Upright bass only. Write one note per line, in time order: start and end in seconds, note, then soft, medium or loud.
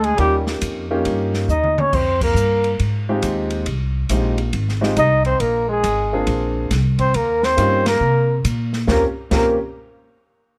0.00 0.17 D2 medium
0.18 0.60 D#2 medium
0.62 1.04 F2 medium
1.06 1.48 G2 medium
1.48 1.90 D#2 medium
1.92 2.34 F2 medium
2.34 2.77 G2 medium
2.80 3.22 G#2 medium
3.23 3.65 D#2 medium
3.66 4.08 C2 medium
4.09 4.52 A#1 medium
4.53 4.95 G#1 medium
4.96 5.39 C2 medium
5.40 5.82 A#1 medium
5.84 6.26 G#1 medium
6.27 6.69 A#1 medium
6.71 7.13 C2 medium
7.14 7.56 D#2 medium
7.58 8.00 G2 medium
8.00 8.43 C3 medium
8.45 8.87 A#2 medium
8.87 9.03 D#2 medium
9.31 9.57 D#2 medium